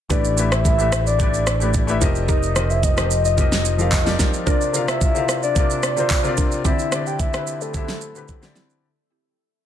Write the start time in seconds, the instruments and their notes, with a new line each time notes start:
0.09 fingered electric bass A1, grand piano A3 E4 G4 B4 D5, synth pluck D4 G4 B4, soft synth lead D5, kick, shaker
0.25 shaker
0.37 grand piano A3 E4 G4 B4 E5, shaker
0.52 soft synth lead E5, cross-stick, shaker
0.65 soft synth lead E5, kick, shaker
0.78 grand piano A3 E4 G4 B4 E5, shaker
0.92 cross-stick, shaker
1.07 soft synth lead D5, shaker
1.18 grand piano A3 E4 G4 B4 D5, kick, shaker
1.34 shaker
1.47 cross-stick, shaker
1.60 grand piano A3 E4 G4 B4 D5, shaker
1.74 kick, shaker
1.87 grand piano A3 E4 G4 B4 E5, shaker
2.00 fingered electric bass F1, grand piano F3 C4 G4 A#4 D#5, synth pluck D#4 G4 A#4, kick, shaker
2.15 shaker
2.28 synth pluck D#4 G4 A#4, soft synth lead D#5, kick, shaker
2.43 shaker
2.55 grand piano F3 C4 G4 A#4 D#5, cross-stick, shaker
2.70 soft synth lead E5, shaker
2.83 soft synth lead D#5, kick, shaker
2.96 grand piano F3 C4 G4 A#4 D#5, cross-stick, shaker
3.11 shaker
3.25 soft synth lead D#5, shaker
3.37 grand piano F3 C4 G4 A#4 D#5, kick, shaker
3.52 snare, shaker
3.65 shaker
3.78 grand piano F3 C4 G4 A#4 F5, shaker
3.92 kick, clap, shaker
4.05 grand piano F3 C4 G4 A#4 D5, snare, shaker
4.19 synth pluck D#4 G4 A#4, kick, snare, shaker
4.34 shaker
4.46 grand piano C3 C4 F4 A#4 D5, synth pluck D4 F4 A#4, soft synth lead D5, kick, shaker
4.61 shaker
4.73 grand piano C3 C4 F4 A#4 F5, shaker
4.88 soft synth lead E5, cross-stick, shaker
5.01 soft synth lead E5, kick, shaker
5.15 grand piano C3 C4 F4 A#4 F5, shaker
5.29 cross-stick, shaker
5.43 soft synth lead D5, shaker
5.55 grand piano C3 C4 F4 A#4 D5, kick, shaker
5.70 shaker
5.83 cross-stick, shaker
5.96 grand piano C3 C4 F4 A#4 C5, shaker
6.10 kick, clap, shaker
6.24 grand piano C3 C4 F4 A#4 D5, shaker
6.37 synth pluck D4 F4 A#4, kick, shaker
6.52 shaker
6.64 grand piano D3 C4 E4 G4 D5, synth pluck C4 E4 G4, soft synth lead E5, kick, shaker
6.79 shaker
6.91 grand piano D3 C4 E4 G4 D5, cross-stick, shaker
7.07 soft synth lead G5, shaker
7.20 soft synth lead E5, kick, shaker
7.33 grand piano D3 C4 E4 G4 B4, cross-stick, shaker
7.47 shaker
7.61 soft synth lead A4, shaker
7.73 grand piano D3 C4 E4 G4 E5, kick, shaker
7.88 snare, shaker
8.01 shaker
8.14 grand piano D3 C4 E4 G4 B4, shaker
8.28 kick, shaker
8.42 grand piano D3 C4 E4 G4 D5, snare, shaker
8.55 synth pluck C4 E4 G4, snare, shaker
8.70 shaker